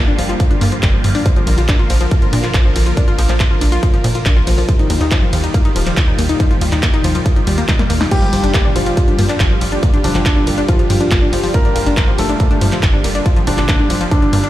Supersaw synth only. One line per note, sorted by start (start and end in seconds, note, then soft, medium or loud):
0.00 4.65 D3 medium
0.00 1.22 G3 medium
0.00 4.65 A#3 medium
0.00 4.65 F4 medium
0.00 1.22 G4 loud
1.26 4.65 F3 medium
1.26 4.65 A#4 loud
4.69 14.50 A#2 medium
4.69 8.08 D#3 medium
4.69 14.50 G3 medium
4.69 14.50 F4 medium
4.69 14.50 G4 medium
8.12 14.50 D3 medium